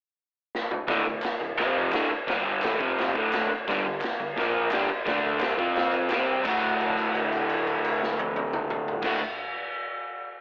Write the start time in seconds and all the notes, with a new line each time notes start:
0.55 snare
0.71 mid tom
0.87 D2 A2 D3, kick, snare, crash
1.05 D2 A2
1.22 snare, clap, crash
1.40 D2 A2
1.57 F2 C3 F3, kick, snare, crash
1.92 D2 A2 D3, snare, clap, crash
2.11 muted overdriven electric guitar stroke
2.27 G2 D3 G3, kick, snare, crash
2.62 A2 E3 A3, snare, clap, crash
2.79 F2 C3 F3, kick
2.98 snare, crash
3.15 D2 A2 D3, kick
3.33 snare, clap, crash
3.50 muted overdriven electric guitar stroke
3.68 G2 D3 G3, kick, snare, crash
3.85 G2 D3
4.01 snare, clap, crash
4.20 G2 D3
4.36 A#2 F3 A#3, kick, snare, crash
4.71 G2 D3 G3, snare, clap, crash
4.90 muted overdriven electric guitar stroke
5.06 D3 A3 D4, kick, snare, crash
5.40 C3 G3 C4, snare, clap, crash
5.57 F3 C4 F4, kick
5.76 snare, crash
5.93 clap
6.10 C3 G3 C4, snare, clap, crash
6.45 D2 A2 D3 A3, kick, clap, crash
6.49 F#4
6.63 kick, crash
6.80 crash
6.98 kick, crash
7.15 crash
7.32 kick, crash
7.49 crash
7.67 kick, crash
7.84 crash
8.03 snare
8.19 high tom
8.36 high tom
8.53 mid tom
8.70 mid tom
8.88 floor tom
9.02 D2 A2 D3 A3, kick, snare, crash
9.06 F#4